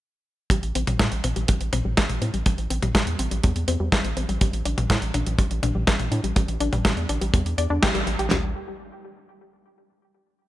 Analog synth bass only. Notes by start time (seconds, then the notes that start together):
0.50 A1
0.63 A1
0.75 A1
0.87 A1
1.00 A2
1.12 A1
1.24 A1
1.36 A1
1.49 A1
1.61 A1
1.73 A1
1.85 A1
1.98 A1
2.09 A1
2.22 A2
2.34 A1
2.46 A1
2.58 A1
2.70 A1
2.82 A1
2.95 A1
3.07 E2
3.19 A1
3.31 A1
3.44 E2
3.56 E2
3.68 E2
3.80 E2
3.92 A1
4.04 A1
4.17 A1
4.29 A1
4.41 A1
4.53 A1
4.65 A1
4.78 A1
4.90 A2
5.02 A1
5.14 A1
5.26 A1
5.39 A1
5.51 A1
5.63 A1
5.75 A1
5.88 A1
5.99 A1
6.12 A2
6.24 A1
6.36 A1
6.48 A1
6.60 A1
6.73 A1
6.85 A1
6.97 E2
7.09 A1
7.21 A1
7.34 E2
7.46 E2
7.58 E2
7.70 E2
7.83 A1
7.95 A1
8.07 A1
8.19 A1
8.31 A1